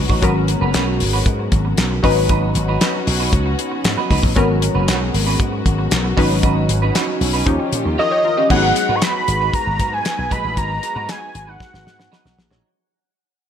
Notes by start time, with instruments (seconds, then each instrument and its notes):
Already playing: analog polysynth F#3 C#4 D#4 B4, string section B3 C#4 F#4
0.09 slap bass A1, clean electric guitar D#4 F#4 C#5, kick
0.22 slap bass G#1, analog polysynth F#3 B3 C#4 A#4, string section G#3 B3, clean electric guitar C#4 F#4 B4, kick, closed hi-hat
0.36 muted clean electric guitar stroke
0.48 muted clean electric guitar stroke, closed hi-hat
0.61 slap bass F#1, clean electric guitar C#4 F#4 B4
0.74 slap bass B1, clean electric guitar C#4 F#4 B4, snare, clap, closed hi-hat
0.87 muted clean electric guitar stroke
1.00 slap bass G#1, muted clean electric guitar stroke, open hi-hat
1.13 clean electric guitar C#4 F#4 B4
1.26 slap bass G#2, muted clean electric guitar stroke, kick, closed hi-hat
1.39 muted clean electric guitar stroke
1.52 slap bass G#1, kick, closed hi-hat
1.65 muted clean electric guitar stroke
1.78 slap bass B1, muted clean electric guitar stroke, snare, clap, closed hi-hat
1.91 muted clean electric guitar stroke
2.03 slap bass G#1, analog polysynth F#3 C#4 D#4 B4, string section C#4 F#4, clean electric guitar D#4 F#4 B4, kick, open hi-hat
2.16 clean electric guitar D#4 F#4 B4
2.29 slap bass G#1, clean electric guitar D#4 F#4 B4, kick, closed hi-hat
2.42 muted clean electric guitar stroke
2.55 slap bass G#1, muted clean electric guitar stroke, closed hi-hat
2.68 clean electric guitar D#4 F#4 B4
2.81 clean electric guitar D#4 F#4 B4, snare, clap, closed hi-hat
2.94 muted clean electric guitar stroke
3.07 slap bass B1, muted clean electric guitar stroke, open hi-hat
3.20 clean electric guitar D#4 F#4 B4
3.33 slap bass C#2, muted clean electric guitar stroke, kick, closed hi-hat
3.46 muted clean electric guitar stroke
3.59 closed hi-hat
3.72 muted clean electric guitar stroke
3.84 slap bass G#2, muted clean electric guitar stroke, snare, clap, closed hi-hat
3.97 clean electric guitar D#4 F#4 B4
4.10 slap bass C#2, clean electric guitar D#4 F#4 B4, kick, open hi-hat
4.23 slap bass A1, muted clean electric guitar stroke, kick
4.36 slap bass G#1, analog polysynth F#3 B3 C#4 A#4, string section G#3 F#4, clean electric guitar C#4 F#4 B4, kick, closed hi-hat
4.49 muted clean electric guitar stroke
4.62 muted clean electric guitar stroke, closed hi-hat
4.75 slap bass F#1, clean electric guitar C#4 F#4 B4
4.88 slap bass B1, clean electric guitar C#4 F#4 B4, snare, clap, closed hi-hat
5.01 muted clean electric guitar stroke
5.14 slap bass G#1, muted clean electric guitar stroke, open hi-hat
5.26 clean electric guitar C#4 F#4 B4
5.39 slap bass G#2, muted clean electric guitar stroke, kick, closed hi-hat
5.52 muted clean electric guitar stroke
5.66 slap bass G#1, kick, closed hi-hat
5.78 muted clean electric guitar stroke
5.91 slap bass B1, muted clean electric guitar stroke, snare, clap, closed hi-hat
6.04 muted clean electric guitar stroke
6.17 slap bass G#1, analog polysynth F#3 C#4 D#4 B4, string section C#4, clean electric guitar D#4 F#4 B4, kick, open hi-hat
6.30 clean electric guitar D#4 F#4 B4
6.43 slap bass G#1, clean electric guitar D#4 F#4 B4, kick, closed hi-hat
6.56 muted clean electric guitar stroke
6.69 slap bass G#1, muted clean electric guitar stroke, closed hi-hat
6.82 clean electric guitar D#4 F#4 B4
6.95 clean electric guitar D#4 F#4 B4, snare, clap, closed hi-hat
7.08 muted clean electric guitar stroke
7.21 slap bass B1, muted clean electric guitar stroke, open hi-hat
7.33 clean electric guitar D#4 F#4 B4
7.46 slap bass D#2, string section D#3 F4 G4, analog polysynth F3 C#4 D#4 G4, muted clean electric guitar stroke, kick, closed hi-hat
7.59 muted clean electric guitar stroke
7.72 slap bass A#2, closed hi-hat
7.85 slap bass D#2, muted clean electric guitar stroke
7.98 clean electric guitar F4 G4 C#5, analog polysynth A#4 D#5, analog synth lead D#5
8.11 analog polysynth G4 C#5, muted clean electric guitar stroke
8.24 analog polysynth F4 A#4, muted clean electric guitar stroke
8.37 analog polysynth C#4 G4, clean electric guitar F4 G4 D#5
8.49 slap bass G#1, analog polysynth F#3 B3 D#4 G#4, string section G#3 F#4 B4, clean electric guitar D#4 F#4 B4, analog synth lead F#5, kick, crash
8.63 muted clean electric guitar stroke
8.76 muted clean electric guitar stroke, closed hi-hat
8.89 slap bass G#2, clean electric guitar D#4 F#4 B4
8.95 analog synth lead C#6
9.02 clean electric guitar D#4 F#4 B4, analog synth lead B5, snare, clap, closed hi-hat
9.15 muted clean electric guitar stroke
9.28 slap bass G#1, muted clean electric guitar stroke, closed hi-hat
9.41 clean electric guitar D#4 F#4 B4
9.54 analog synth lead A#5, muted clean electric guitar stroke, kick, closed hi-hat
9.67 slap bass G#1, muted clean electric guitar stroke
9.80 slap bass G#2, kick, closed hi-hat
9.93 analog synth lead G#5, muted clean electric guitar stroke
10.05 muted clean electric guitar stroke, snare, clap, closed hi-hat
10.18 slap bass B1, muted clean electric guitar stroke
10.31 slap bass A#1, clean electric guitar D#4 F#4 B4, analog synth lead B5, kick, closed hi-hat
10.44 slap bass A1, clean electric guitar D#4 F#4 B4
10.57 slap bass G#1, clean electric guitar D#4 F#4 B4, string section F#4, analog synth lead A#5, kick, closed hi-hat
10.70 muted clean electric guitar stroke
10.83 muted clean electric guitar stroke, closed hi-hat
10.96 slap bass G#2, clean electric guitar D#4 F#4 B4
11.09 clean electric guitar D#4 F#4 B4, analog synth lead G#5, snare, clap, closed hi-hat
11.22 muted clean electric guitar stroke
11.35 slap bass G#1, muted clean electric guitar stroke, closed hi-hat
11.47 clean electric guitar D#4 F#4 B4, analog synth lead F#5
11.60 muted clean electric guitar stroke, kick, snare
11.73 slap bass G#1, muted clean electric guitar stroke, snare
11.86 slap bass G#2, snare
11.99 muted clean electric guitar stroke, snare
12.12 clean electric guitar D#4 F#4 B4, snare
12.25 slap bass B1, muted clean electric guitar stroke, snare
12.38 slap bass A#1, muted clean electric guitar stroke, snare
12.51 slap bass A1, clean electric guitar D#4 F#4 C#5, snare